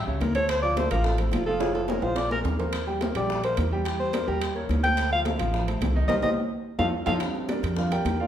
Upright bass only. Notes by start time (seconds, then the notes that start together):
0.07 C#2
0.20 D2
0.91 A1
1.32 F1
2.02 A#1
2.44 D#2
3.15 A#1
3.57 E2
4.28 D#2
4.69 D2
5.39 A1
5.81 C2
6.08 C2
6.23 C2
6.79 F2
7.07 F2
7.63 F2
8.05 E2